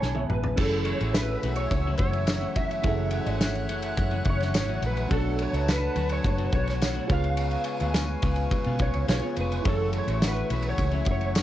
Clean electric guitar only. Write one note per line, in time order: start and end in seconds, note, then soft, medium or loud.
0.00 0.14 C#3 medium
0.00 0.14 G#3 medium
0.00 0.14 B3 medium
0.00 0.13 E4 medium
0.14 0.57 G#2 medium
0.14 0.56 C#3 medium
0.14 0.57 G#3 medium
0.14 0.58 B3 medium
0.14 0.58 E4 medium
0.57 1.00 F#2 medium
0.57 1.00 C#3 medium
0.57 1.00 E3 medium
0.57 1.00 A3 medium
0.57 1.00 C#4 medium
0.57 0.99 F#4 medium
1.00 1.42 E3 soft
1.00 1.43 A3 soft
1.00 1.43 C#4 soft
1.00 1.43 F#4 medium
1.44 1.86 E3 medium
1.44 1.86 A3 medium
1.44 1.86 C#4 medium
1.44 1.86 F#4 medium
1.87 2.42 F#2 medium
1.87 2.42 C#3 medium
1.87 2.42 E3 medium
1.87 2.42 A3 medium
1.87 2.41 C#4 medium
1.87 2.41 F#4 medium
2.42 2.83 F#2 medium
2.42 2.83 C#3 medium
2.42 2.84 E3 medium
2.42 2.84 A3 medium
2.42 2.84 C#4 medium
2.42 2.85 F#4 medium
2.84 3.27 F#2 medium
2.84 3.27 C#3 medium
2.84 3.27 E3 medium
2.84 3.26 A3 medium
2.84 3.25 C#4 medium
2.84 3.24 F#4 medium
3.26 3.67 E3 medium
3.26 3.68 A3 medium
3.26 3.69 C#4 medium
3.26 3.69 F#4 medium
3.69 4.12 E3 medium
3.69 4.11 A3 medium
3.69 4.11 C#4 medium
3.69 4.10 F#4 medium
4.12 4.69 F#2 medium
4.12 4.69 C#3 medium
4.12 4.68 E3 medium
4.12 4.69 A3 medium
4.12 4.68 C#4 medium
4.12 4.68 F#4 medium
4.69 5.12 F#2 medium
4.69 5.09 C#3 medium
4.69 5.10 E3 medium
4.69 5.10 A3 medium
4.69 5.11 C#4 medium
4.69 5.11 F#4 medium
5.10 5.53 B2 medium
5.10 5.54 F#3 medium
5.10 5.54 A3 medium
5.10 5.53 D4 medium
5.10 5.52 F#4 medium
5.53 5.95 A3 soft
5.53 5.96 D4 soft
5.53 5.96 F#4 medium
5.96 6.38 F#3 medium
5.96 6.38 A3 medium
5.96 6.37 D4 medium
5.96 6.37 F#4 medium
6.38 6.95 B2 medium
6.38 6.95 F#3 medium
6.38 6.94 A3 medium
6.38 6.94 D4 medium
6.38 6.93 F#4 medium
6.94 7.08 B2 medium
6.94 7.09 F#3 medium
6.94 7.10 A3 medium
6.94 7.10 D4 medium
6.94 7.09 F#4 medium
7.09 7.80 C#3 medium
7.09 7.81 G#3 medium
7.09 7.80 B3 medium
7.09 7.79 F4 medium
7.81 8.23 G#3 medium
7.81 8.24 B3 soft
7.81 8.23 F4 medium
8.23 8.66 C#3 medium
8.23 8.66 G#3 medium
8.23 8.66 B3 medium
8.23 8.66 F4 medium
8.67 9.24 C#3 medium
8.67 9.23 G#3 medium
8.67 9.23 B3 medium
8.67 9.22 F4 medium
9.23 9.64 C#3 medium
9.23 9.66 G#3 medium
9.23 9.66 B3 medium
9.23 9.65 F4 medium
9.65 10.07 F#2 medium
9.65 10.08 C#3 medium
9.65 10.08 E3 medium
9.65 10.08 A3 medium
9.65 10.07 C#4 medium
9.65 10.07 F#4 medium
10.08 10.50 E3 soft
10.08 10.51 A3 soft
10.08 10.50 C#4 soft
10.08 10.50 F#4 medium
10.51 10.93 E3 medium
10.51 10.92 A3 medium
10.51 10.92 C#4 medium
10.51 10.91 F#4 medium
10.93 11.43 F#2 medium
10.93 11.43 C#3 medium
10.93 11.43 E3 medium
10.93 11.43 A3 medium
10.93 11.43 C#4 medium
10.93 11.43 F#4 medium